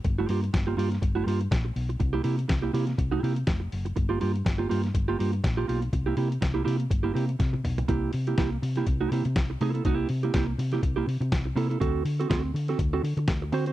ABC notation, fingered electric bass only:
X:1
M:4/4
L:1/16
Q:"Swing 16ths" 1/4=122
K:Cmix
V:1 name="Fingered electric bass" clef=bass
G,,,2 G,,2 G,,,2 G,,2 G,,,2 G,,2 B,,,2 =B,,,2 | C,,2 C,2 C,,2 C,2 C,,2 C,2 F,,,2 ^F,,,2 | G,,,2 G,,2 G,,,2 G,,2 G,,,2 G,,2 B,,,2 =B,,,2 | C,,2 C,2 C,,2 C,2 G,,,2 C,2 C,2 =B,,,2 |
C,,2 C,2 C,,2 C,2 C,,2 C, C, C,,2 C,2 | C,,2 C,2 C,,2 C,2 C,,2 C, C, C,,2 C,2 | D,,2 D,2 D,,2 D,2 D,,2 D, D, D,,2 D,2 |]